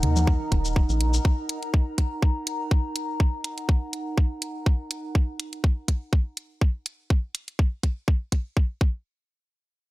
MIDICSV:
0, 0, Header, 1, 5, 480
1, 0, Start_track
1, 0, Key_signature, -6, "minor"
1, 0, Tempo, 487805
1, 1229, Time_signature, 4, 2, 24, 8
1, 9748, End_track
2, 0, Start_track
2, 0, Title_t, "Ambient pad"
2, 0, Program_c, 0, 92
2, 0, Note_on_c, 0, 63, 70
2, 0, Note_on_c, 0, 70, 72
2, 0, Note_on_c, 0, 78, 91
2, 0, Note_on_c, 0, 82, 85
2, 5068, Note_off_c, 0, 70, 0
2, 5069, Note_off_c, 0, 63, 0
2, 5069, Note_off_c, 0, 78, 0
2, 5069, Note_off_c, 0, 82, 0
2, 9748, End_track
3, 0, Start_track
3, 0, Title_t, "Synth texture"
3, 0, Program_c, 1, 99
3, 0, Note_on_c, 1, 63, 86
3, 0, Note_on_c, 1, 75, 88
3, 1240, Note_off_c, 1, 63, 0
3, 1240, Note_off_c, 1, 75, 0
3, 9748, End_track
4, 0, Start_track
4, 0, Title_t, "Analog synth bass"
4, 0, Program_c, 2, 38
4, 29, Note_on_c, 2, 39, 78
4, 331, Note_off_c, 2, 39, 0
4, 509, Note_on_c, 2, 27, 99
4, 811, Note_off_c, 2, 27, 0
4, 879, Note_on_c, 2, 34, 96
4, 1172, Note_off_c, 2, 34, 0
4, 9748, End_track
5, 0, Start_track
5, 0, Title_t, "Drums"
5, 29, Note_on_c, 9, 47, 88
5, 30, Note_on_c, 9, 42, 92
5, 128, Note_off_c, 9, 42, 0
5, 128, Note_off_c, 9, 47, 0
5, 160, Note_on_c, 9, 48, 77
5, 161, Note_on_c, 9, 82, 48
5, 258, Note_off_c, 9, 48, 0
5, 259, Note_off_c, 9, 82, 0
5, 269, Note_on_c, 9, 36, 118
5, 368, Note_off_c, 9, 36, 0
5, 509, Note_on_c, 9, 36, 62
5, 510, Note_on_c, 9, 42, 90
5, 608, Note_off_c, 9, 36, 0
5, 608, Note_off_c, 9, 42, 0
5, 640, Note_on_c, 9, 82, 47
5, 738, Note_off_c, 9, 82, 0
5, 749, Note_on_c, 9, 36, 118
5, 847, Note_off_c, 9, 36, 0
5, 880, Note_on_c, 9, 82, 26
5, 979, Note_off_c, 9, 82, 0
5, 990, Note_on_c, 9, 42, 91
5, 1088, Note_off_c, 9, 42, 0
5, 1119, Note_on_c, 9, 82, 47
5, 1218, Note_off_c, 9, 82, 0
5, 1229, Note_on_c, 9, 36, 109
5, 1328, Note_off_c, 9, 36, 0
5, 1469, Note_on_c, 9, 42, 88
5, 1568, Note_off_c, 9, 42, 0
5, 1600, Note_on_c, 9, 42, 35
5, 1698, Note_off_c, 9, 42, 0
5, 1709, Note_on_c, 9, 36, 110
5, 1807, Note_off_c, 9, 36, 0
5, 1949, Note_on_c, 9, 36, 60
5, 1949, Note_on_c, 9, 42, 92
5, 2047, Note_off_c, 9, 36, 0
5, 2047, Note_off_c, 9, 42, 0
5, 2189, Note_on_c, 9, 36, 114
5, 2287, Note_off_c, 9, 36, 0
5, 2429, Note_on_c, 9, 42, 88
5, 2528, Note_off_c, 9, 42, 0
5, 2669, Note_on_c, 9, 36, 115
5, 2767, Note_off_c, 9, 36, 0
5, 2909, Note_on_c, 9, 42, 88
5, 3007, Note_off_c, 9, 42, 0
5, 3149, Note_on_c, 9, 36, 104
5, 3247, Note_off_c, 9, 36, 0
5, 3389, Note_on_c, 9, 42, 84
5, 3487, Note_off_c, 9, 42, 0
5, 3519, Note_on_c, 9, 42, 34
5, 3617, Note_off_c, 9, 42, 0
5, 3628, Note_on_c, 9, 36, 104
5, 3727, Note_off_c, 9, 36, 0
5, 3868, Note_on_c, 9, 42, 84
5, 3967, Note_off_c, 9, 42, 0
5, 4108, Note_on_c, 9, 36, 108
5, 4207, Note_off_c, 9, 36, 0
5, 4348, Note_on_c, 9, 42, 85
5, 4446, Note_off_c, 9, 42, 0
5, 4588, Note_on_c, 9, 36, 108
5, 4687, Note_off_c, 9, 36, 0
5, 4829, Note_on_c, 9, 42, 84
5, 4927, Note_off_c, 9, 42, 0
5, 5068, Note_on_c, 9, 36, 101
5, 5166, Note_off_c, 9, 36, 0
5, 5309, Note_on_c, 9, 42, 82
5, 5407, Note_off_c, 9, 42, 0
5, 5439, Note_on_c, 9, 42, 33
5, 5538, Note_off_c, 9, 42, 0
5, 5548, Note_on_c, 9, 36, 102
5, 5646, Note_off_c, 9, 36, 0
5, 5788, Note_on_c, 9, 36, 54
5, 5789, Note_on_c, 9, 42, 85
5, 5887, Note_off_c, 9, 36, 0
5, 5887, Note_off_c, 9, 42, 0
5, 6028, Note_on_c, 9, 36, 109
5, 6127, Note_off_c, 9, 36, 0
5, 6269, Note_on_c, 9, 42, 84
5, 6367, Note_off_c, 9, 42, 0
5, 6508, Note_on_c, 9, 36, 105
5, 6607, Note_off_c, 9, 36, 0
5, 6749, Note_on_c, 9, 42, 78
5, 6848, Note_off_c, 9, 42, 0
5, 6989, Note_on_c, 9, 36, 104
5, 7087, Note_off_c, 9, 36, 0
5, 7229, Note_on_c, 9, 42, 82
5, 7327, Note_off_c, 9, 42, 0
5, 7360, Note_on_c, 9, 42, 33
5, 7458, Note_off_c, 9, 42, 0
5, 7469, Note_on_c, 9, 36, 103
5, 7567, Note_off_c, 9, 36, 0
5, 7709, Note_on_c, 9, 36, 53
5, 7709, Note_on_c, 9, 42, 83
5, 7807, Note_off_c, 9, 36, 0
5, 7808, Note_off_c, 9, 42, 0
5, 7949, Note_on_c, 9, 36, 107
5, 8047, Note_off_c, 9, 36, 0
5, 8189, Note_on_c, 9, 36, 55
5, 8189, Note_on_c, 9, 42, 85
5, 8287, Note_off_c, 9, 36, 0
5, 8287, Note_off_c, 9, 42, 0
5, 8429, Note_on_c, 9, 36, 109
5, 8527, Note_off_c, 9, 36, 0
5, 8669, Note_on_c, 9, 36, 107
5, 8767, Note_off_c, 9, 36, 0
5, 9748, End_track
0, 0, End_of_file